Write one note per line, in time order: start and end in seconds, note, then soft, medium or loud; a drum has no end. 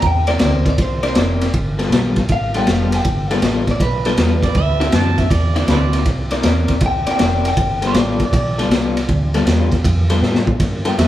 0.02 0.39 E2 medium
0.02 kick medium
0.02 ride medium
0.07 0.29 G5 medium
0.27 0.39 C4 medium
0.27 0.39 E4 medium
0.27 0.39 A#4 medium
0.27 0.40 D5 medium
0.27 snare soft
0.27 ride medium
0.31 0.45 D5 medium
0.39 0.77 D2 medium
0.39 0.69 C4 medium
0.39 0.70 E4 medium
0.39 0.70 A#4 medium
0.39 0.70 D5 medium
0.39 snare medium
0.39 ride medium
0.45 0.67 C5 medium
0.66 0.80 D5 medium
0.66 kick medium
0.66 snare soft
0.66 ride medium
0.78 1.15 C2 medium
0.78 kick loud
0.78 snare soft
0.78 ride medium
0.83 1.05 C5 medium
1.03 1.15 C4 medium
1.03 1.15 E4 medium
1.03 1.15 A#4 medium
1.03 1.16 D5 medium
1.03 snare soft
1.03 ride medium
1.08 1.18 C5 loud
1.15 1.53 F1 medium
1.15 1.45 C4 medium
1.15 1.45 E4 medium
1.15 1.45 A#4 medium
1.15 1.46 D5 medium
1.15 snare loud
1.15 ride medium
1.41 snare soft
1.41 ride medium
1.54 1.90 G1 medium
1.54 kick loud
1.54 ride medium
1.79 1.91 G3 medium
1.79 1.92 B3 medium
1.79 1.92 F4 medium
1.79 1.92 A4 loud
1.79 snare soft
1.79 ride medium
1.90 2.28 B1 medium
1.90 2.21 G3 medium
1.90 2.21 B3 medium
1.90 2.21 F4 medium
1.90 2.21 A4 medium
1.90 snare loud
1.90 ride medium
2.16 kick medium
2.16 snare soft
2.16 ride medium
2.29 2.66 A1 medium
2.29 2.55 F5 medium
2.29 kick loud
2.29 ride medium
2.54 2.67 G3 medium
2.54 2.67 B3 medium
2.54 2.68 F4 loud
2.54 2.68 A4 loud
2.54 2.70 G5 medium
2.54 snare soft
2.54 ride medium
2.67 3.04 F1 medium
2.67 2.97 G3 medium
2.67 2.96 B3 medium
2.67 2.97 F4 medium
2.67 2.97 A4 medium
2.67 2.94 F5 medium
2.67 snare loud
2.67 ride medium
2.92 3.32 G5 medium
2.92 snare soft
2.92 ride medium
3.05 3.42 G1 medium
3.05 kick loud
3.05 ride medium
3.31 3.42 G3 medium
3.31 3.43 B3 medium
3.31 3.43 F4 medium
3.31 3.43 A4 loud
3.31 3.68 D5 medium
3.31 snare soft
3.31 ride medium
3.42 3.79 A1 medium
3.42 3.72 B3 medium
3.42 3.72 F4 medium
3.42 3.72 A4 medium
3.42 snare loud
3.42 ride medium
3.67 3.82 D5 medium
3.67 kick medium
3.67 snare soft
3.67 ride medium
3.80 4.16 B1 medium
3.80 4.91 B4 medium
3.80 kick loud
3.80 ride medium
4.05 4.17 G3 medium
4.05 4.17 B3 medium
4.05 4.18 F4 medium
4.05 4.18 A4 loud
4.05 snare soft
4.05 ride medium
4.17 4.54 E2 medium
4.17 4.47 G3 medium
4.17 4.47 B3 medium
4.17 4.47 F4 medium
4.17 4.47 A4 medium
4.17 snare loud
4.17 ride medium
4.43 4.56 D5 medium
4.43 kick medium
4.43 snare soft
4.43 ride medium
4.55 4.92 D2 medium
4.55 4.97 E5 loud
4.55 kick loud
4.55 ride medium
4.80 4.92 D3 medium
4.80 4.92 C4 medium
4.80 4.93 E4 medium
4.80 4.93 F#4 medium
4.80 snare soft
4.80 ride medium
4.92 5.30 F#2 medium
4.92 5.22 D3 medium
4.92 5.22 C4 medium
4.92 5.23 E4 medium
4.92 5.23 F#4 medium
4.92 5.22 A5 loud
4.92 snare loud
4.92 ride medium
5.18 5.33 E5 medium
5.18 kick medium
5.18 snare soft
5.18 ride medium
5.31 5.67 E2 medium
5.31 5.55 D5 medium
5.31 kick loud
5.31 snare soft
5.31 ride medium
5.56 5.68 D3 medium
5.56 5.68 C4 medium
5.56 5.69 E4 medium
5.56 5.69 F#4 medium
5.56 5.69 D5 medium
5.56 snare soft
5.56 ride medium
5.68 6.05 D2 medium
5.68 5.98 D3 medium
5.68 5.98 C4 medium
5.68 5.98 E4 medium
5.68 5.98 F#4 medium
5.68 5.78 A4 medium
5.68 5.78 B4 medium
5.68 6.06 D5 medium
5.68 snare medium
5.68 ride medium
5.93 snare soft
5.93 ride medium
6.05 6.43 C2 medium
6.05 kick medium
6.05 snare soft
6.05 ride medium
6.31 6.44 C4 medium
6.31 6.44 E4 medium
6.31 6.45 A#4 medium
6.31 6.44 D5 medium
6.31 snare soft
6.31 ride medium
6.43 6.80 E2 medium
6.43 6.73 C4 medium
6.43 6.74 E4 medium
6.43 6.74 A#4 medium
6.43 6.74 D5 medium
6.43 snare loud
6.43 ride medium
6.68 kick medium
6.68 snare soft
6.68 ride medium
6.81 7.05 C2 medium
6.81 kick loud
6.81 ride medium
6.86 7.08 G5 medium
7.07 7.18 C4 medium
7.07 7.18 E4 medium
7.07 7.19 A#4 medium
7.07 7.20 D5 loud
7.07 muted fingered electric bass stroke soft
7.07 snare soft
7.07 ride medium
7.11 7.22 G5 medium
7.19 7.56 F1 medium
7.19 7.48 C4 medium
7.19 7.49 E4 medium
7.19 7.49 A#4 medium
7.19 7.49 D5 medium
7.19 snare loud
7.19 ride medium
7.24 7.46 G5 medium
7.45 7.83 G5 medium
7.45 snare soft
7.45 ride medium
7.57 7.94 G1 medium
7.57 kick loud
7.57 ride medium
7.82 7.94 G3 medium
7.82 7.94 B3 medium
7.82 7.95 F4 medium
7.82 7.95 A4 medium
7.82 snare soft
7.82 ride medium
7.87 8.22 D5 medium
7.94 8.31 A1 medium
7.94 8.24 G3 medium
7.94 8.24 B3 medium
7.94 8.25 F4 medium
7.94 8.25 A4 medium
7.94 snare loud
7.94 ride medium
8.20 kick medium
8.20 snare soft
8.20 ride medium
8.25 8.33 D5 medium
8.33 8.69 B1 medium
8.33 9.44 D5 medium
8.33 kick loud
8.33 ride medium
8.58 8.70 G3 medium
8.58 8.70 B3 medium
8.58 8.70 F4 medium
8.58 8.70 A4 medium
8.58 snare soft
8.58 ride medium
8.70 9.07 C2 medium
8.70 9.00 G3 medium
8.70 9.00 B3 medium
8.70 9.00 F4 medium
8.70 9.00 A4 medium
8.70 snare loud
8.70 ride medium
8.97 snare soft
8.97 ride medium
9.09 9.46 D2 medium
9.09 kick loud
9.09 ride medium
9.34 9.46 G3 medium
9.34 9.47 B3 medium
9.34 9.47 F4 medium
9.34 9.47 A4 medium
9.34 snare soft
9.34 ride medium
9.46 9.83 E2 medium
9.46 9.76 G3 medium
9.46 9.76 B3 medium
9.46 9.76 F4 medium
9.46 9.76 A4 medium
9.46 snare loud
9.46 ride medium
9.72 kick medium
9.72 snare soft
9.72 ride medium
9.84 10.21 F2 medium
9.84 kick loud
9.84 ride medium
10.10 10.22 G3 medium
10.10 10.22 B3 medium
10.10 10.22 F4 loud
10.10 10.23 A4 medium
10.10 snare soft
10.10 ride medium
10.21 10.59 A2 medium
10.21 10.51 G3 medium
10.21 10.52 B3 medium
10.21 10.52 F4 medium
10.21 10.52 A4 medium
10.21 snare medium
10.35 snare medium
10.47 kick loud
10.60 10.97 G2 medium
10.60 kick loud
10.60 snare soft
10.60 ride medium
10.85 10.96 G3 medium
10.85 10.97 B3 medium
10.85 10.98 F4 medium
10.85 10.98 A4 medium
10.85 10.97 G5 medium
10.85 snare soft
10.85 ride medium
10.98 11.08 F2 medium
10.98 11.08 G3 medium
10.98 11.08 B3 medium
10.98 11.08 F4 medium
10.98 11.08 A4 medium
10.98 11.08 E5 medium
10.98 snare loud
10.98 ride medium